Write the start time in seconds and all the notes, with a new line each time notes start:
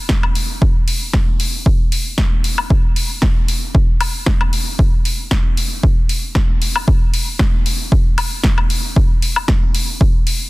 0.09 kick, snare
0.23 high woodblock
0.35 open hi-hat
0.62 kick
0.88 open hi-hat
1.13 kick, snare
1.40 open hi-hat
1.66 kick
1.92 open hi-hat
2.18 kick, snare
2.44 open hi-hat
2.58 high woodblock
2.70 kick
2.96 open hi-hat
3.22 kick, snare
3.48 open hi-hat
3.75 kick
4.01 open hi-hat, high woodblock
4.26 kick, snare
4.41 high woodblock
4.53 open hi-hat
4.79 kick
5.05 open hi-hat
5.31 kick, snare
5.57 open hi-hat
5.83 kick
6.09 open hi-hat
6.35 kick, snare
6.62 open hi-hat
6.76 high woodblock
6.88 kick
7.14 open hi-hat
7.39 kick, snare
7.66 open hi-hat
7.92 kick
8.18 open hi-hat, high woodblock
8.44 kick, snare
8.58 high woodblock
8.70 open hi-hat
8.96 kick
9.22 open hi-hat
9.36 high woodblock
9.48 kick, snare
9.75 open hi-hat
10.01 kick
10.27 open hi-hat